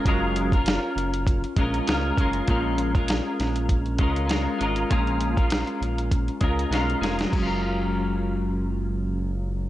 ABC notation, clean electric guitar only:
X:1
M:4/4
L:1/16
Q:"Swing 16ths" 1/4=99
K:F#
V:1 name="Clean electric guitar"
[F,G,CEA]3 [CEA]6- [CEA] [G,CEA]2 [G,CEA]2 [G,CEA]2 | [A,,E,G,CEA]3 [G,CEA]6- [G,CEA] [G,CEA]2 [G,CEA]2 [G,CEA]2 | [A,,E,G,CEA]3 [G,CEA]6- [G,CEA] [G,CEA]2 [G,CEA]2 [G,CEA]2 | [F,G,CEA]16 |]